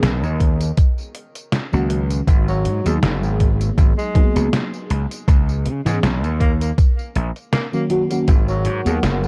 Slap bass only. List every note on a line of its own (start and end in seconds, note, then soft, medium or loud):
0.02 0.23 B1 medium
0.23 0.70 D#2 medium
1.73 2.20 C#2 medium
2.27 2.66 G#1 medium
2.65 2.80 G#2 medium
2.86 2.98 D#2 loud
3.02 3.23 F#1 loud
3.23 3.70 G#1 medium
3.78 3.92 G#1 medium
4.36 4.48 C#2 medium
4.90 5.05 C#2 loud
5.28 5.67 C#2 medium
5.65 5.80 C#3 medium
5.86 5.98 G#2 loud
6.03 6.24 B1 medium
6.24 6.70 D#2 medium
7.16 7.30 A#1 medium
8.28 8.67 G#1 medium
8.66 8.80 G#2 medium
8.86 8.98 D#2 loud
9.03 9.24 F#1 loud
9.24 9.28 G#1 medium